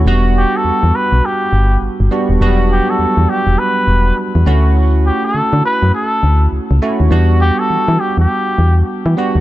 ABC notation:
X:1
M:4/4
L:1/16
Q:"Swing 16ths" 1/4=102
K:Edor
V:1 name="Muted trumpet"
z2 G A3 B2 G4 z4 | z2 G A3 G2 B4 z4 | z2 G A3 B2 A4 z4 | z2 G A3 G G4- G z4 |]
V:2 name="Tine electric piano"
[G,B,DF]6 z8 [G,B,DF]2 | [F,G,B,DF]6 z8 [A,CEF]2- | [A,CEF]4 z8 z2 [A,CEF]2 | [G,B,DF]6 z8 [G,B,DF]2 |]
V:3 name="FM bass" clef=bass
E,,,3 z E,, E,, z B,,, z2 G,,,2 G,,, G,,, z ^D,,, | E,,,3 z E,, E,, z E,,, z2 E,,,2 z E,, D,,2- | D,,3 z D, D, z F,, z2 D,,2 C,, C,, z ^D,, | E,,3 z E, E, z E,, z2 E,,2 z E, z ^D,, |]